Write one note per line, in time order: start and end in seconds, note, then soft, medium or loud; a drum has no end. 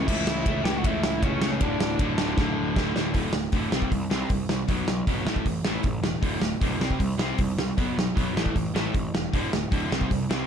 0.07 0.25 C#2 loud
0.07 0.46 A2 loud
0.07 0.46 E3 loud
0.07 0.48 A3 loud
0.07 0.61 E4 medium
0.07 0.64 E5 loud
0.07 kick loud
0.07 crash loud
0.27 0.44 C#2 medium
0.27 snare loud
0.46 0.63 C#2 medium
0.46 0.65 A2 medium
0.46 0.66 E3 medium
0.46 0.67 A3 loud
0.46 kick loud
0.46 ride medium
0.65 0.82 C#2 medium
0.65 0.83 A2 medium
0.65 0.84 E3 medium
0.65 0.86 A3 medium
0.65 0.74 G4 medium
0.65 0.77 G5 loud
0.65 snare loud
0.77 0.85 F#4 medium
0.77 0.86 F#5 medium
0.84 1.01 C#2 loud
0.84 1.21 A2 loud
0.84 1.22 E3 loud
0.84 1.23 A3 loud
0.84 1.21 E4 medium
0.84 1.24 E5 loud
0.84 kick loud
0.84 ride medium
1.03 1.20 C#2 medium
1.03 snare loud
1.23 1.40 C#2 loud
1.23 1.41 A2 medium
1.23 1.42 E3 medium
1.23 1.42 A3 medium
1.23 1.51 C#4 medium
1.23 1.52 C#5 medium
1.23 kick loud
1.23 ride medium
1.41 1.58 C#2 medium
1.41 1.60 A2 medium
1.41 1.60 E3 medium
1.41 1.61 A3 loud
1.41 snare loud
1.52 1.61 C#4 medium
1.52 1.61 C#5 medium
1.61 1.78 D1 loud
1.61 1.98 D2 loud
1.61 1.99 A2 medium
1.61 2.00 D3 loud
1.61 2.73 D4 medium
1.61 2.72 D5 medium
1.61 kick loud
1.61 ride medium
1.79 1.97 D1 medium
1.79 snare loud
1.99 2.16 D1 medium
1.99 2.17 D2 medium
1.99 2.17 A2 medium
1.99 2.18 D3 loud
1.99 kick loud
1.99 ride medium
2.18 2.35 D1 medium
2.18 2.36 D2 medium
2.18 2.37 A2 medium
2.18 2.37 D3 medium
2.18 snare loud
2.37 2.55 D1 medium
2.37 2.75 D2 medium
2.37 2.75 A2 loud
2.37 2.75 D3 medium
2.37 kick loud
2.37 snare medium
2.58 2.75 D1 medium
2.76 2.93 D1 medium
2.76 2.93 D2 medium
2.76 2.94 A2 medium
2.76 2.95 D3 medium
2.76 kick loud
2.76 snare loud
2.94 3.13 D1 medium
2.94 3.13 D2 medium
2.94 3.13 A2 medium
2.94 3.14 D3 medium
2.94 snare loud
3.14 3.27 D1 medium
3.14 3.32 D2 medium
3.14 3.32 A2 medium
3.14 3.33 D3 medium
3.14 kick medium
3.14 open hi-hat medium
3.33 3.46 D1 medium
3.33 3.51 D2 medium
3.33 3.51 A2 medium
3.33 snare loud
3.52 3.65 D1 medium
3.52 3.71 D2 medium
3.52 3.71 A2 medium
3.52 3.71 D3 medium
3.52 kick loud
3.52 open hi-hat medium
3.72 3.85 C2 medium
3.72 3.90 C3 medium
3.72 3.90 G3 medium
3.72 3.91 C4 medium
3.72 snare loud
3.82 kick medium
3.91 4.04 C2 medium
3.91 4.08 C3 medium
3.91 4.09 G3 medium
3.91 kick medium
3.91 open hi-hat medium
4.10 4.24 C2 medium
4.10 4.28 C3 medium
4.10 4.29 G3 medium
4.10 4.29 C4 medium
4.10 snare medium
4.29 4.43 C2 medium
4.29 4.47 C3 medium
4.29 4.48 G3 medium
4.29 kick loud
4.29 open hi-hat medium
4.49 4.62 C2 medium
4.49 4.67 C3 medium
4.49 4.67 G3 medium
4.49 snare medium
4.68 4.81 B1 medium
4.68 4.86 B2 medium
4.68 4.87 F#3 medium
4.68 4.87 B3 medium
4.68 kick loud
4.68 open hi-hat medium
4.88 5.01 B1 medium
4.88 5.06 B2 medium
4.88 5.06 F#3 medium
4.88 snare loud
5.07 5.27 D1 medium
5.07 5.26 B2 medium
5.07 5.26 F#3 medium
5.07 5.26 B3 medium
5.07 kick loud
5.07 open hi-hat medium
5.26 5.39 A1 medium
5.26 5.45 A2 medium
5.26 5.45 E3 medium
5.26 5.45 A3 medium
5.26 snare medium
5.36 kick medium
5.45 5.58 A1 medium
5.45 5.63 A2 medium
5.45 5.64 E3 medium
5.45 kick medium
5.45 open hi-hat medium
5.65 5.77 A1 medium
5.65 5.83 A2 medium
5.65 5.83 E3 medium
5.65 5.84 A3 medium
5.65 snare loud
5.83 5.97 A1 medium
5.83 6.02 A2 medium
5.83 6.02 E3 medium
5.83 kick loud
5.83 open hi-hat soft
6.02 6.15 E1 medium
6.02 6.21 A2 medium
6.02 6.21 E3 medium
6.02 snare medium
6.22 6.35 D1 medium
6.22 6.41 D2 medium
6.22 6.41 A2 medium
6.22 6.41 D3 medium
6.22 kick loud
6.22 open hi-hat medium
6.41 6.54 D1 medium
6.41 6.60 D2 medium
6.41 6.60 A2 medium
6.41 snare loud
6.62 6.74 B1 medium
6.62 6.80 D2 medium
6.62 6.80 A2 medium
6.62 6.81 D3 medium
6.62 kick loud
6.62 open hi-hat medium
6.80 6.92 C2 medium
6.80 6.99 C3 medium
6.80 6.99 G3 medium
6.80 7.00 C4 medium
6.80 snare medium
6.91 kick medium
7.00 7.13 C2 medium
7.00 7.18 C3 medium
7.00 7.18 G3 medium
7.00 kick medium
7.00 open hi-hat medium
7.18 7.31 C2 medium
7.18 7.38 C3 medium
7.18 7.39 G3 medium
7.18 7.39 C4 loud
7.18 snare loud
7.38 7.51 C2 medium
7.38 7.57 C3 medium
7.38 7.57 G3 medium
7.38 kick loud
7.38 open hi-hat medium
7.57 7.70 C2 medium
7.57 7.76 C3 medium
7.57 7.76 G3 medium
7.57 snare medium
7.77 7.90 B1 medium
7.77 7.96 B2 medium
7.77 7.96 F#3 medium
7.77 7.96 B3 medium
7.77 kick loud
7.77 open hi-hat medium
7.96 8.09 B1 medium
7.96 8.15 B2 medium
7.96 8.15 F#3 medium
7.96 snare loud
8.17 8.29 B1 medium
8.17 8.35 B2 medium
8.17 8.35 F#3 medium
8.17 8.35 B3 medium
8.17 kick loud
8.17 open hi-hat medium
8.35 8.48 A1 medium
8.35 8.54 A2 medium
8.35 8.54 E3 medium
8.35 8.55 A3 medium
8.35 snare loud
8.46 kick medium
8.55 8.68 A1 medium
8.55 8.73 A2 medium
8.55 8.73 E3 medium
8.55 kick medium
8.55 open hi-hat medium
8.75 8.87 A1 medium
8.75 8.92 A2 medium
8.75 8.92 E3 medium
8.75 8.94 A3 medium
8.75 snare loud
8.93 9.07 A1 medium
8.93 9.11 A2 medium
8.93 9.11 E3 medium
8.93 kick loud
8.93 open hi-hat soft
9.14 9.27 E1 medium
9.14 9.31 A2 medium
9.14 9.31 E3 medium
9.14 snare medium
9.33 9.46 D1 medium
9.33 9.51 D2 medium
9.33 9.51 A2 medium
9.33 9.52 D3 medium
9.33 kick loud
9.33 open hi-hat medium
9.52 9.65 D1 medium
9.52 9.70 D2 medium
9.52 9.70 A2 medium
9.52 snare loud
9.71 9.85 D1 medium
9.71 9.89 D2 medium
9.71 9.90 A2 medium
9.71 9.90 D3 medium
9.71 kick loud
9.71 open hi-hat medium
9.90 10.04 C2 medium
9.90 10.08 C3 medium
9.90 10.09 G3 medium
9.90 10.09 C4 medium
9.90 snare loud
10.01 kick medium
10.10 10.24 C2 medium
10.10 10.28 C3 medium
10.10 10.28 G3 medium
10.10 kick medium
10.10 open hi-hat medium
10.30 10.43 C2 medium
10.30 10.47 C3 medium
10.30 10.47 G3 medium
10.30 10.47 C4 medium
10.30 snare loud